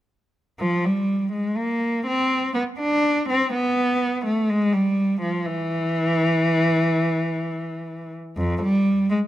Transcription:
cello
0.59 F3
0.85 G3
1.33 G#3
1.57 A#3
2.07 C4
2.54 B3
2.79 D4
3.30 C4
3.54 B3
4.26 A3
4.49 G#3
4.73 G3
5.22 F3
5.46 E3
8.37 F2
8.63 G3
9.11 G#3

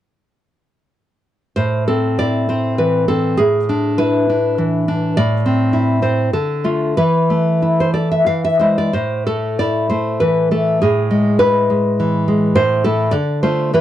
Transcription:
nylon-string guitar
1.56 A2 C5
1.88 C4 A4
2.19 E4 D5
2.49 C4 C5
2.78 E3 B4
3.08 C4 A4
3.37 A2 G#4
3.69 D4
3.98 E4 B4
4.29 D4
4.58 E3
4.88 D4
5.17 A2 D5
5.46 C4
5.73 E4
6.02 C4 C5
6.33 D3 A4
6.64 A3 F4
6.97 E3 B4
7.30 A3
7.62 E4
7.80 C5
7.94 A4 D5
8.12 E5
8.26 E3 F5
8.45 E5
8.59 G#3 E4 C5
8.78 D5
8.93 A2 C5
9.27 A3 A4
9.59 E4 D5
9.90 A3 C5
10.20 E3 B4
10.51 A3 A4
10.82 A2 G#4
11.11 G#3
11.39 E4 B4
11.70 G#3
12.00 E3
12.28 G#3
12.55 A2 C5
12.84 A3 E4 A4
13.11 D3 D5
13.43 A3 F4 C5
13.74 E3 B4

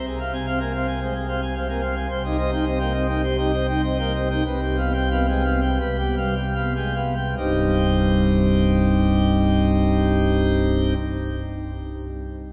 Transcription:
pipe organ
Already playing: C2 C3
0.06 G#4
0.20 C4 F5
0.34 G#5
0.47 C4 F5
0.60 A#3 G#5
0.74 C4 F5
0.88 G#5
1.01 G#3 C5
1.15 G#4
1.28 C4 F5
1.42 G#5
1.55 C4 F5
1.69 A#3 G#5
1.82 C4 F5
1.96 G#5
2.10 C2 C3 C5
2.24 D#4 G4
2.38 C4 D#5
2.52 D#4 G5
2.66 C4 D#5
2.79 A#3 G5
2.94 C4 D#5
3.08 D#4 G5
3.23 G3 C5
3.38 D#4 G4
3.53 C4 D#5
3.68 D#4 G5
3.83 C4 D#5
3.99 A#3 G5
4.15 C4 D#5
4.30 D#4 G5
4.46 C2 C3 B4
4.62 G4
4.78 B3 F5
4.94 G5
5.11 B3 F5
5.29 G#3 G5
5.44 B3 F5
5.62 G5
5.80 C2 C3 B4
5.98 B3 G4
6.18 G3 F5
6.37 G5
6.55 B3 F5
6.76 G#3 G5
6.96 B3 F5
7.16 G5
7.37 C1 C2 G2 G3 C4 D#4 G4

